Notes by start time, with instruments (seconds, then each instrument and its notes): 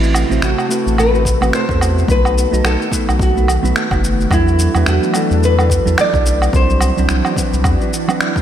Already playing: analog synth bass A1, analog synth pad C3 A3 F#4 A4, clean electric guitar A3 C4 E4 F#4 B4, nylon-string guitar E4
0.03 cabasa
0.14 cabasa, low woodblock
0.29 analog synth bass A1, clean electric guitar A3 C4 E4 F#4 C5, cabasa
0.42 analog synth bass A1, nylon-string guitar F#4, finger snap, cabasa
0.58 cabasa, low woodblock
0.69 clean electric guitar A3 C4 E4 F#4 B4, cabasa
0.87 analog synth bass A1, cabasa
0.98 nylon-string guitar B4, cabasa, low woodblock
1.13 clean electric guitar A3 C4 E4 F#4 B4, cabasa
1.25 kick, cabasa
1.41 analog synth bass A1, clean electric guitar A3 C4 E4 F#4 B4, cabasa, low woodblock
1.53 nylon-string guitar C5, finger snap, cabasa
1.68 analog synth bass E2, clean electric guitar A3 C4 E4 F#4 C5, kick, cabasa
1.81 cabasa, low woodblock
1.98 cabasa
2.07 analog synth bass B1, analog synth pad D#3, clean electric guitar A3 B3 D#4 F#4 B4, kick, cabasa
2.11 nylon-string guitar B4
2.25 cabasa, low woodblock
2.38 cabasa
2.51 analog synth bass B1, clean electric guitar A3 B3 D#4 F#4 D#5, cabasa
2.64 analog synth bass B1, nylon-string guitar A4, finger snap, cabasa, low woodblock
2.82 cabasa
2.91 clean electric guitar A3 B3 D#4 F#4 B4, kick, cabasa
3.09 analog synth bass B1, cabasa, low woodblock
3.19 nylon-string guitar F#4, kick, cabasa
3.35 clean electric guitar A3 B3 D#4 F#4 B4, cabasa
3.48 cabasa, low woodblock
3.63 analog synth bass B1, clean electric guitar A3 B3 D#4 F#4 B4, cabasa
3.76 finger snap, cabasa
3.91 analog synth bass F#1, clean electric guitar A3 B3 D#4 F#4 B4, kick, cabasa, low woodblock
4.04 cabasa
4.21 cabasa
4.30 analog synth bass E2, analog synth pad E3 A3 D4, clean electric guitar F#3 B3 D4 E4 A4, nylon-string guitar E4, kick, cabasa, low woodblock
4.48 cabasa
4.59 cabasa
4.75 analog synth bass E2, clean electric guitar F#3 B3 D4 E4 B4, cabasa, low woodblock
4.86 analog synth bass E2, nylon-string guitar F#4, finger snap, cabasa
5.03 cabasa
5.14 clean electric guitar F#3 B3 D4 E4 A4, cabasa, low woodblock
5.31 analog synth bass E2, cabasa
5.43 nylon-string guitar B4, cabasa
5.58 clean electric guitar F#3 B3 D4 E4 A4, cabasa, low woodblock
5.70 kick, cabasa
5.86 analog synth bass E2, clean electric guitar F#3 B3 D4 E4 A4, cabasa
5.98 nylon-string guitar D5, finger snap, cabasa, low woodblock
6.12 analog synth bass B1, clean electric guitar F#3 B3 D4 E4 A4, kick, cabasa
6.26 cabasa
6.42 cabasa, low woodblock
6.52 analog synth bass C2, analog synth pad E3 D4 F#4, clean electric guitar F#3 C4 D4 E4 C5, nylon-string guitar C5, kick, cabasa
6.70 cabasa
6.80 cabasa, low woodblock
6.97 analog synth bass C2, clean electric guitar F#3 C4 D4 E4 C5, cabasa
7.09 analog synth bass C2, finger snap, cabasa
7.25 cabasa, low woodblock
7.36 clean electric guitar F#3 C4 D4 E4 B4, kick, cabasa
7.53 analog synth bass C2, cabasa
7.64 analog synth bass E2, kick, cabasa, low woodblock
7.80 clean electric guitar F#3 C4 D4 E4 B4, cabasa
7.93 cabasa
8.08 clean electric guitar F#3 C4 D4 E4 B4, cabasa, low woodblock
8.21 finger snap, cabasa
8.35 clean electric guitar F#3 C4 D4 E4 B4, kick, cabasa